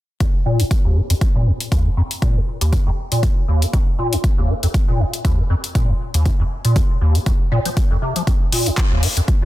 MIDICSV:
0, 0, Header, 1, 3, 480
1, 0, Start_track
1, 0, Tempo, 504202
1, 195, Time_signature, 4, 2, 24, 8
1, 8996, End_track
2, 0, Start_track
2, 0, Title_t, "Acid bass"
2, 0, Program_c, 0, 38
2, 195, Note_on_c, 0, 41, 78
2, 239, Note_off_c, 0, 41, 0
2, 435, Note_on_c, 0, 46, 79
2, 567, Note_on_c, 0, 39, 103
2, 582, Note_off_c, 0, 46, 0
2, 603, Note_off_c, 0, 39, 0
2, 807, Note_on_c, 0, 39, 79
2, 915, Note_on_c, 0, 44, 75
2, 929, Note_off_c, 0, 39, 0
2, 959, Note_off_c, 0, 44, 0
2, 1047, Note_on_c, 0, 41, 72
2, 1083, Note_off_c, 0, 41, 0
2, 1288, Note_on_c, 0, 46, 74
2, 1395, Note_on_c, 0, 39, 97
2, 1410, Note_off_c, 0, 46, 0
2, 1439, Note_off_c, 0, 39, 0
2, 1635, Note_on_c, 0, 39, 83
2, 1768, Note_on_c, 0, 44, 72
2, 1782, Note_off_c, 0, 39, 0
2, 1803, Note_off_c, 0, 44, 0
2, 1876, Note_on_c, 0, 41, 75
2, 1919, Note_off_c, 0, 41, 0
2, 2115, Note_on_c, 0, 46, 81
2, 2248, Note_on_c, 0, 39, 102
2, 2262, Note_off_c, 0, 46, 0
2, 2283, Note_off_c, 0, 39, 0
2, 2488, Note_on_c, 0, 39, 73
2, 2596, Note_on_c, 0, 44, 83
2, 2610, Note_off_c, 0, 39, 0
2, 2639, Note_off_c, 0, 44, 0
2, 2728, Note_on_c, 0, 41, 78
2, 2763, Note_off_c, 0, 41, 0
2, 2968, Note_on_c, 0, 46, 75
2, 3075, Note_on_c, 0, 39, 103
2, 3089, Note_off_c, 0, 46, 0
2, 3119, Note_off_c, 0, 39, 0
2, 3315, Note_on_c, 0, 39, 75
2, 3448, Note_on_c, 0, 44, 74
2, 3462, Note_off_c, 0, 39, 0
2, 3483, Note_off_c, 0, 44, 0
2, 3555, Note_on_c, 0, 41, 85
2, 3599, Note_off_c, 0, 41, 0
2, 3795, Note_on_c, 0, 46, 73
2, 3928, Note_on_c, 0, 39, 102
2, 3942, Note_off_c, 0, 46, 0
2, 3963, Note_off_c, 0, 39, 0
2, 4168, Note_on_c, 0, 39, 78
2, 4275, Note_on_c, 0, 44, 79
2, 4290, Note_off_c, 0, 39, 0
2, 4319, Note_off_c, 0, 44, 0
2, 4408, Note_on_c, 0, 41, 73
2, 4443, Note_off_c, 0, 41, 0
2, 4648, Note_on_c, 0, 46, 75
2, 4755, Note_on_c, 0, 39, 104
2, 4769, Note_off_c, 0, 46, 0
2, 4799, Note_off_c, 0, 39, 0
2, 4995, Note_on_c, 0, 39, 84
2, 5128, Note_on_c, 0, 44, 75
2, 5142, Note_off_c, 0, 39, 0
2, 5163, Note_off_c, 0, 44, 0
2, 5235, Note_on_c, 0, 41, 75
2, 5279, Note_off_c, 0, 41, 0
2, 5475, Note_on_c, 0, 46, 86
2, 5608, Note_on_c, 0, 39, 99
2, 5622, Note_off_c, 0, 46, 0
2, 5643, Note_off_c, 0, 39, 0
2, 5848, Note_on_c, 0, 39, 75
2, 5955, Note_on_c, 0, 44, 81
2, 5970, Note_off_c, 0, 39, 0
2, 5999, Note_off_c, 0, 44, 0
2, 6088, Note_on_c, 0, 41, 77
2, 6123, Note_off_c, 0, 41, 0
2, 6328, Note_on_c, 0, 46, 75
2, 6436, Note_on_c, 0, 39, 104
2, 6450, Note_off_c, 0, 46, 0
2, 6479, Note_off_c, 0, 39, 0
2, 6676, Note_on_c, 0, 39, 77
2, 6808, Note_on_c, 0, 44, 76
2, 6822, Note_off_c, 0, 39, 0
2, 6843, Note_off_c, 0, 44, 0
2, 6916, Note_on_c, 0, 41, 87
2, 6959, Note_off_c, 0, 41, 0
2, 7156, Note_on_c, 0, 46, 98
2, 7228, Note_off_c, 0, 46, 0
2, 7288, Note_on_c, 0, 53, 75
2, 7323, Note_off_c, 0, 53, 0
2, 7528, Note_on_c, 0, 41, 74
2, 7587, Note_off_c, 0, 41, 0
2, 7635, Note_on_c, 0, 48, 75
2, 7745, Note_off_c, 0, 48, 0
2, 7768, Note_on_c, 0, 53, 75
2, 7827, Note_off_c, 0, 53, 0
2, 7875, Note_on_c, 0, 41, 82
2, 7919, Note_off_c, 0, 41, 0
2, 8115, Note_on_c, 0, 46, 80
2, 8248, Note_on_c, 0, 39, 99
2, 8262, Note_off_c, 0, 46, 0
2, 8283, Note_off_c, 0, 39, 0
2, 8488, Note_on_c, 0, 39, 79
2, 8595, Note_on_c, 0, 44, 80
2, 8609, Note_off_c, 0, 39, 0
2, 8639, Note_off_c, 0, 44, 0
2, 8728, Note_on_c, 0, 41, 73
2, 8763, Note_off_c, 0, 41, 0
2, 8967, Note_on_c, 0, 46, 74
2, 8996, Note_off_c, 0, 46, 0
2, 8996, End_track
3, 0, Start_track
3, 0, Title_t, "Drums"
3, 195, Note_on_c, 9, 36, 118
3, 195, Note_on_c, 9, 42, 51
3, 290, Note_off_c, 9, 36, 0
3, 290, Note_off_c, 9, 42, 0
3, 568, Note_on_c, 9, 42, 64
3, 663, Note_off_c, 9, 42, 0
3, 675, Note_on_c, 9, 36, 105
3, 675, Note_on_c, 9, 42, 51
3, 770, Note_off_c, 9, 36, 0
3, 770, Note_off_c, 9, 42, 0
3, 1048, Note_on_c, 9, 42, 65
3, 1143, Note_off_c, 9, 42, 0
3, 1155, Note_on_c, 9, 36, 110
3, 1155, Note_on_c, 9, 42, 52
3, 1250, Note_off_c, 9, 36, 0
3, 1250, Note_off_c, 9, 42, 0
3, 1528, Note_on_c, 9, 42, 65
3, 1623, Note_off_c, 9, 42, 0
3, 1635, Note_on_c, 9, 36, 99
3, 1635, Note_on_c, 9, 42, 53
3, 1730, Note_off_c, 9, 36, 0
3, 1730, Note_off_c, 9, 42, 0
3, 2008, Note_on_c, 9, 42, 67
3, 2103, Note_off_c, 9, 42, 0
3, 2115, Note_on_c, 9, 36, 121
3, 2115, Note_on_c, 9, 42, 51
3, 2210, Note_off_c, 9, 36, 0
3, 2210, Note_off_c, 9, 42, 0
3, 2488, Note_on_c, 9, 42, 62
3, 2583, Note_off_c, 9, 42, 0
3, 2595, Note_on_c, 9, 36, 107
3, 2595, Note_on_c, 9, 42, 50
3, 2690, Note_off_c, 9, 36, 0
3, 2690, Note_off_c, 9, 42, 0
3, 2967, Note_on_c, 9, 42, 65
3, 3063, Note_off_c, 9, 42, 0
3, 3075, Note_on_c, 9, 36, 112
3, 3075, Note_on_c, 9, 42, 50
3, 3170, Note_off_c, 9, 36, 0
3, 3170, Note_off_c, 9, 42, 0
3, 3448, Note_on_c, 9, 42, 63
3, 3543, Note_off_c, 9, 42, 0
3, 3555, Note_on_c, 9, 36, 100
3, 3555, Note_on_c, 9, 42, 53
3, 3650, Note_off_c, 9, 36, 0
3, 3650, Note_off_c, 9, 42, 0
3, 3928, Note_on_c, 9, 42, 65
3, 4023, Note_off_c, 9, 42, 0
3, 4035, Note_on_c, 9, 36, 123
3, 4036, Note_on_c, 9, 42, 49
3, 4130, Note_off_c, 9, 36, 0
3, 4131, Note_off_c, 9, 42, 0
3, 4408, Note_on_c, 9, 42, 57
3, 4503, Note_off_c, 9, 42, 0
3, 4515, Note_on_c, 9, 36, 104
3, 4515, Note_on_c, 9, 42, 49
3, 4610, Note_off_c, 9, 36, 0
3, 4610, Note_off_c, 9, 42, 0
3, 4888, Note_on_c, 9, 42, 62
3, 4983, Note_off_c, 9, 42, 0
3, 4995, Note_on_c, 9, 36, 116
3, 4995, Note_on_c, 9, 42, 49
3, 5090, Note_off_c, 9, 36, 0
3, 5090, Note_off_c, 9, 42, 0
3, 5367, Note_on_c, 9, 42, 58
3, 5463, Note_off_c, 9, 42, 0
3, 5475, Note_on_c, 9, 36, 104
3, 5475, Note_on_c, 9, 42, 51
3, 5570, Note_off_c, 9, 36, 0
3, 5570, Note_off_c, 9, 42, 0
3, 5848, Note_on_c, 9, 42, 65
3, 5943, Note_off_c, 9, 42, 0
3, 5955, Note_on_c, 9, 36, 121
3, 5955, Note_on_c, 9, 42, 51
3, 6050, Note_off_c, 9, 36, 0
3, 6050, Note_off_c, 9, 42, 0
3, 6327, Note_on_c, 9, 42, 57
3, 6422, Note_off_c, 9, 42, 0
3, 6435, Note_on_c, 9, 36, 107
3, 6435, Note_on_c, 9, 42, 50
3, 6530, Note_off_c, 9, 36, 0
3, 6530, Note_off_c, 9, 42, 0
3, 6807, Note_on_c, 9, 42, 61
3, 6902, Note_off_c, 9, 42, 0
3, 6914, Note_on_c, 9, 42, 50
3, 6915, Note_on_c, 9, 36, 117
3, 7010, Note_off_c, 9, 36, 0
3, 7010, Note_off_c, 9, 42, 0
3, 7287, Note_on_c, 9, 42, 57
3, 7382, Note_off_c, 9, 42, 0
3, 7395, Note_on_c, 9, 36, 102
3, 7395, Note_on_c, 9, 42, 50
3, 7490, Note_off_c, 9, 36, 0
3, 7490, Note_off_c, 9, 42, 0
3, 7767, Note_on_c, 9, 42, 61
3, 7863, Note_off_c, 9, 42, 0
3, 7875, Note_on_c, 9, 36, 115
3, 7875, Note_on_c, 9, 42, 50
3, 7970, Note_off_c, 9, 36, 0
3, 7970, Note_off_c, 9, 42, 0
3, 8115, Note_on_c, 9, 46, 103
3, 8210, Note_off_c, 9, 46, 0
3, 8248, Note_on_c, 9, 42, 59
3, 8343, Note_off_c, 9, 42, 0
3, 8355, Note_on_c, 9, 36, 106
3, 8355, Note_on_c, 9, 42, 49
3, 8356, Note_on_c, 9, 39, 107
3, 8450, Note_off_c, 9, 36, 0
3, 8451, Note_off_c, 9, 39, 0
3, 8451, Note_off_c, 9, 42, 0
3, 8595, Note_on_c, 9, 46, 90
3, 8690, Note_off_c, 9, 46, 0
3, 8728, Note_on_c, 9, 42, 61
3, 8823, Note_off_c, 9, 42, 0
3, 8835, Note_on_c, 9, 36, 110
3, 8835, Note_on_c, 9, 42, 49
3, 8930, Note_off_c, 9, 36, 0
3, 8931, Note_off_c, 9, 42, 0
3, 8996, End_track
0, 0, End_of_file